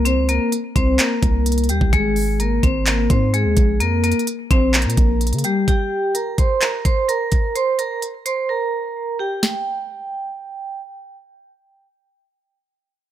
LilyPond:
<<
  \new Staff \with { instrumentName = "Vibraphone" } { \time 4/4 \key aes \major \tempo 4 = 128 <c' c''>8 <bes bes'>8 r8 <c' c''>8 <bes bes'>4. <g g'>8 | <aes aes'>4 <bes bes'>8 <c' c''>8 <bes bes'>8 <c' c''>8 <aes aes'>4 | <bes bes'>8 <bes bes'>8 r8 <c' c''>8 <bes bes'>4. <g g'>8 | <g' g''>4 <bes' bes''>8 <c'' c'''>8 <bes' bes''>8 <c'' c'''>8 <bes' bes''>4 |
<c'' c'''>8 <bes' bes''>8 r8 <c'' c'''>8 <bes' bes''>4. <g' g''>8 | g''2. r4 | r1 | }
  \new Staff \with { instrumentName = "808-style bass" } { \clef bass \time 4/4 \key aes \major c,16 des,8 r8. c,8 r8 c,4 ees,16 c,16 | aes,,4. aes,,4 aes,8. ees,16 bes,,8 | f,8. r8. bes,,8. bes,16 bes,,8. des16 r8 | r1 |
r1 | r1 | r1 | }
  \new DrumStaff \with { instrumentName = "Drums" } \drummode { \time 4/4 hh8 hh8 hh8 <hh bd>8 <hc hh>8 <hh bd>8 hh32 hh32 hh32 hh32 hh16 bd16 | <hh bd>8 hho8 hh8 <hh bd>8 <hc hh>8 <hh bd>8 hh8 <hh bd>8 | \tuplet 3/2 { hh16 r16 r16 <hh hho>16 hh16 hh16 } hh8 <hh bd>8 \tuplet 3/2 { <hc hh>16 hh16 hh16 <hh bd>16 r16 r16 } hh32 hh32 hh32 hh32 hh8 | <hh bd>4 hh8 <hh bd>8 <hc hh>8 <hh bd>8 hh8 <hh bd>8 |
hh8 hh8 hh8 hh8 r4 r4 | sn4 r4 r4 r4 | r4 r4 r4 r4 | }
>>